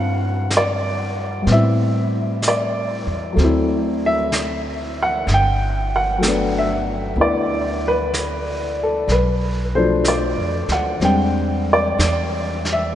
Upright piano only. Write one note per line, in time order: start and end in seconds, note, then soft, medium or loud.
0.00 1.45 F#3 soft
0.00 1.44 B3 soft
0.00 1.46 C4 soft
0.00 1.49 D4 soft
0.00 1.47 E4 soft
0.00 1.48 F#4 soft
0.00 1.49 F5 medium
0.00 0.57 F#5 medium
0.00 1.49 A5 medium
0.57 1.53 D5 medium
1.42 3.35 G3 soft
1.46 3.37 B3 soft
1.46 3.38 C4 soft
1.52 3.41 E4 soft
1.52 2.41 E5 medium
2.48 4.01 D5 medium
3.32 5.25 F#3 soft
3.32 5.27 A3 soft
3.40 5.29 C4 soft
3.40 5.31 E4 medium
4.06 5.02 E5 medium
5.03 5.28 F#5 medium
5.34 5.96 G5 medium
5.96 6.52 F#5 medium
6.18 9.07 F#3 soft
6.18 9.08 A3 soft
6.25 7.15 B3 soft
6.25 7.16 D4 medium
6.58 7.22 E5 medium
7.17 9.09 B3 soft
7.17 9.09 D4 soft
7.17 9.10 E4 soft
7.21 7.80 D5 medium
7.88 8.77 B4 medium
8.83 9.12 A4 medium
9.12 9.70 B4 medium
9.75 11.02 B2 soft
9.75 11.02 F3 medium
9.75 11.02 A3 medium
9.75 11.01 D4 medium
9.75 10.04 C5 medium
10.08 10.67 D5 medium
10.72 11.01 F#5 medium
11.02 12.92 G3 soft
11.02 12.95 G#3 soft
11.02 12.95 C4 soft
11.02 12.95 D4 soft
11.02 12.64 G5 medium
11.73 12.72 D5 medium
12.73 12.95 E5 medium